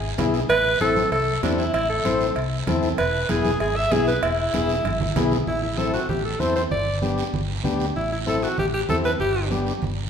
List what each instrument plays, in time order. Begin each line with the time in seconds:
Already playing: fingered electric bass G#1, alto saxophone G#4
0.18 fingered electric bass B1, transistor combo organ B3 E4 G#4, cowbell, high conga, low conga, low timbale, short guiro
0.34 short guiro
0.50 fingered electric bass A1, alto saxophone B4, cowbell, long guiro
0.81 fingered electric bass A1, transistor combo organ C4 E4 A4, alto saxophone A4, cowbell, high conga, short guiro
0.97 high conga, short guiro
1.12 fingered electric bass C2, alto saxophone A4, cowbell, long guiro
1.43 fingered electric bass E2, transistor combo organ C4 E4 A4, alto saxophone D4, cowbell, high conga, low timbale, short guiro
1.58 alto saxophone E4, short guiro
1.74 fingered electric bass A1, alto saxophone E4, cowbell, long guiro
1.89 alto saxophone A4
2.05 fingered electric bass A1, transistor combo organ C4 E4 C5, cowbell, high conga, short guiro
2.21 short guiro
2.36 fingered electric bass C2, cowbell, long guiro
2.67 fingered electric bass E2, transistor combo organ C4 E4 A4, cowbell, high conga, low conga, short guiro
2.83 short guiro
2.98 fingered electric bass E1, alto saxophone B4, cowbell, long guiro
3.29 fingered electric bass E1, transistor combo organ B3 E4 G#4, alto saxophone G#4, cowbell, high conga, short guiro
3.45 high conga, short guiro
3.60 fingered electric bass G#1, alto saxophone G#4, cowbell, long guiro
3.76 alto saxophone E5
3.92 fingered electric bass B1, transistor combo organ B3 E4 G#4, alto saxophone G#4, cowbell, high conga, low timbale, short guiro
4.07 alto saxophone B4, short guiro
4.23 fingered electric bass E1, alto saxophone E4, cowbell, long guiro
4.54 fingered electric bass E1, transistor combo organ B3 E4 G#4, cowbell, high conga, short guiro
4.69 short guiro
4.85 fingered electric bass G#1, cowbell, high conga, long guiro
5.01 low conga
5.16 fingered electric bass B1, transistor combo organ B3 E4 G#4, cowbell, low conga, low timbale, short guiro
5.31 low conga, short guiro
5.47 fingered electric bass A1, alto saxophone E4, high conga, low conga, long guiro
5.63 alto saxophone E4
5.78 transistor combo organ C4 E4 A4, alto saxophone A4, high conga, short guiro
5.93 alto saxophone F#4, short guiro
6.09 fingered electric bass A1, alto saxophone G4, high conga, low conga, long guiro
6.25 alto saxophone A4
6.39 fingered electric bass E2, transistor combo organ C4 E4 A4, alto saxophone C5, high conga, short guiro
6.56 alto saxophone C5, short guiro
6.71 fingered electric bass G1, alto saxophone D5, high conga, low conga, long guiro
7.02 transistor combo organ B3 D4 G4, high conga, short guiro
7.18 short guiro
7.33 fingered electric bass G1, high conga, low conga, long guiro
7.64 fingered electric bass D2, transistor combo organ B3 D4 G4, high conga, low conga, short guiro
7.80 short guiro
7.96 fingered electric bass A1, alto saxophone E4, high conga, long guiro
8.12 alto saxophone E4
8.26 transistor combo organ C4 E4 A4, alto saxophone A4, high conga, short guiro
8.42 alto saxophone F#4, short guiro
8.58 fingered electric bass A1, alto saxophone G4, high conga, low conga, long guiro
8.74 alto saxophone G4
8.89 fingered electric bass E2, transistor combo organ C4 E4 A4, alto saxophone A4, high conga, low conga, short guiro
9.04 alto saxophone B4, short guiro
9.20 fingered electric bass G1, alto saxophone G4, high conga, low conga, long guiro
9.51 transistor combo organ B3 D4 G4, high conga, short guiro
9.67 short guiro
9.82 fingered electric bass G1, high conga, low conga, long guiro